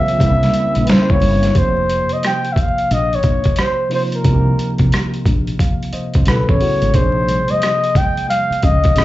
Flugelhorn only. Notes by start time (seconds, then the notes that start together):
Already playing: E5
0.86 B4 C5
1.11 C#5
1.58 C5
2.13 D#5
2.26 G5
2.53 E5
2.60 F5
2.93 D#5
3.15 C#5
3.60 C5
3.94 C5
4.15 A#4
6.28 B4
6.50 C#5
6.95 C5
7.51 D#5
7.97 G5
8.30 F5
8.64 D#5